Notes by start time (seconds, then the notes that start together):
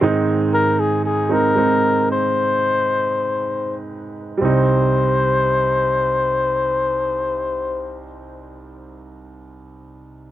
0.01 G#2 D#3 G#3 C4 D#4
0.54 A#4
0.80 G#4
1.05 G#4
1.29 G#3 C4 D#4 A#4
1.56 G#3 C4 D#4
2.12 C5
4.38 C2 G3 C4 C5
4.45 D#4